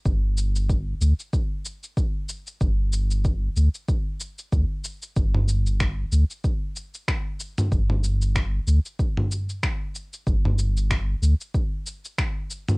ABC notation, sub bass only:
X:1
M:4/4
L:1/8
Q:"Swing 16ths" 1/4=94
K:Cdor
V:1 name="Sub bass" clef=bass
G,,,3 D,, z4 | G,,,3 D,, z2 D,, z | G,,,3 D,, z4 | G,,,3 D,, z4 |
G,,,3 D,, z4 |]